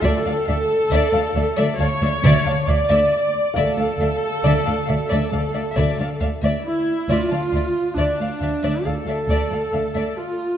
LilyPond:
<<
  \new Staff \with { instrumentName = "Felt piano" } { \time 4/4 \key d \minor \tempo 4 = 68 g''2~ g''8 r4. | f''2. r4 | r1 | }
  \new Staff \with { instrumentName = "Violin section" } { \time 4/4 \key d \minor e''16 a''16 f''16 r16 e''16 a''16 f''16 e''16 a''16 f''16 e''16 a''16 f''16 e''16 r8 | e''16 a''16 f''16 r16 e''16 a''16 f''16 e''16 a''16 f''16 e''16 a''16 f''16 e''16 r8 | e''16 a''16 f''16 r16 e''16 a''16 f''16 e''16 a''16 f''16 e''16 a''16 f''16 e''16 r8 | }
  \new Staff \with { instrumentName = "Violin section" } { \time 4/4 \key d \minor d''16 <d'' f''>16 <d'' e''>16 r16 d''16 <d'' f''>16 <d'' e''>16 d''16 <d'' f''>16 <d'' e''>16 d''16 <d'' f''>16 <d'' e''>16 d''16 r8 | d''16 <d'' f''>16 <d'' e''>16 r16 d''16 <d'' f''>16 <d'' e''>16 d''16 <d'' f''>16 <d'' e''>16 d''16 <d'' f''>16 <d'' e''>16 d''16 r8 | d''16 <d'' f''>16 <d'' e''>16 r16 d''16 <d'' f''>16 <d'' e''>16 d''16 <d'' f''>16 <d'' e''>16 d''16 <d'' f''>16 <d'' e''>16 d''16 r8 | }
  \new Staff \with { instrumentName = "Viola section" } { \time 4/4 \key d \minor a'2 cis''4 d''4 | a'2 a'4 r8 e'8 | f'4 d'4 a'4. f'8 | }
  \new Staff \with { instrumentName = "Cello section" } { \clef bass \time 4/4 \key d \minor d,16 d,16 d,16 r16 d,16 d,16 d,16 d,16 d,16 d,16 d,16 d,16 d,16 d,16 r8 | d,16 d,16 d,16 r16 d,16 d,16 d,16 d,16 d,16 d,16 d,16 d,16 d,16 d,16 r8 | d,16 d,16 d,16 r16 d,16 d,16 d,16 d,16 d,16 d,16 d,16 d,16 d,16 d,16 r8 | }
  \new Staff \with { instrumentName = "Double bass section" } { \clef bass \time 4/4 \key d \minor d,16 r16 d,16 r16 d,16 r16 d,16 r16 d,16 r16 d,16 r16 d,16 r8. | d,16 r16 d,16 r16 d,16 r16 d,16 r16 d,16 r16 d,16 r16 d,16 r8. | d,16 r16 d,16 r16 d,16 r16 d,16 r16 d,16 r16 d,16 r16 d,16 r8. | }
>>